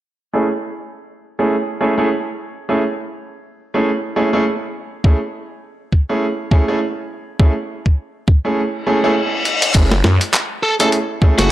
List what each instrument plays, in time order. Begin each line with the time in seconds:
0.33 grand piano A3 C#4 E4 G#4
1.39 grand piano A3 C#4 E4 G#4
1.81 grand piano A3 C#4 E4 G#4
1.98 grand piano A3 C#4 E4 G#4
2.69 grand piano A3 C#4 E4 G#4
3.74 grand piano A3 C#4 E4 G#4
4.16 grand piano A3 C#4 E4 G#4
4.33 grand piano A3 C#4 E4 G#4
5.04 grand piano A3 C#4 E4 G#4, kick
5.92 kick
6.09 grand piano A3 C#4 E4 G#4
6.51 grand piano A3 C#4 E4 G#4, kick
6.68 grand piano A3 C#4 E4 G#4
7.40 grand piano A3 C#4 E4 G#4, kick
7.86 kick
8.28 kick
8.45 grand piano A3 C#4 E4 G#4
8.57 reverse cymbal
8.87 grand piano A3 C#4 E4 G#4
9.04 grand piano A3 C#4 E4 G#4
9.45 closed hi-hat
9.62 closed hi-hat
9.74 detuned saw bass F#1, grand piano A3 C#4 E4 G#4, kick, closed hi-hat, crash
9.91 snare
10.04 detuned saw bass F#2, snare
10.21 closed hi-hat
10.34 clap, closed hi-hat
10.63 lead electric guitar A4
10.80 grand piano A3 C#4 E4 G#4, lead electric guitar A4, closed hi-hat
10.92 closed hi-hat
11.22 grand piano A3 C#4 E4 G#4, kick
11.39 detuned saw bass F#1, grand piano A3 C#4 E4 G#4, lead electric guitar F#4, snare, closed hi-hat